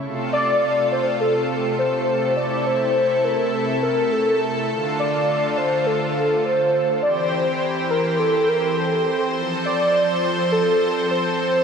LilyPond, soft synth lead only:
\new Staff \with { instrumentName = "Soft synth lead" } { \time 4/4 \key f \major \tempo 4 = 103 r8 d''4 c''8 a'4 c''4 | d''8 c''4 bes'8 a'8 bes'8 a'8. r16 | r8 d''4 c''8 a'4 c''4 | d''8 c''4 bes'8 a'8 bes'8 a'8. r16 |
r8 d''4 c''8 a'4 c''4 | }